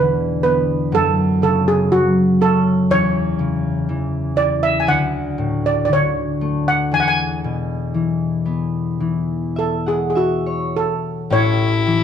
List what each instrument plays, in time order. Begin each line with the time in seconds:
Already playing: harp E2 D3 D4 F#4, steel pan B4
0.43 harp B3, steel pan B4
0.92 harp F#2, steel pan A4
1.42 harp C#3, steel pan A4
1.68 steel pan G#4
1.92 harp F#3, steel pan F#4
2.41 harp C#4, steel pan A4
2.90 harp E2, steel pan C#5
3.39 harp C#3
3.89 harp E3
4.36 harp E4, steel pan D5
4.63 steel pan E5
4.80 steel pan G#5
4.87 harp D2, steel pan F#5
5.38 harp A2
5.66 steel pan D5
5.85 harp D3, steel pan D5
5.93 steel pan C#5
6.41 harp A3
6.68 steel pan F#5
6.92 harp E2, steel pan G#5
7.00 steel pan F#5
7.08 steel pan G#5
7.44 harp B2
7.94 harp E3
8.46 harp B3
9.00 harp E3
9.56 steel pan A4, harp E5
9.86 steel pan G#4, harp F#5
10.10 steel pan G#4
10.15 steel pan F#4, harp E5
10.46 harp C#5
10.76 steel pan A4
11.30 harp A1 A2, fiddle E4, steel pan C#5
11.87 harp E3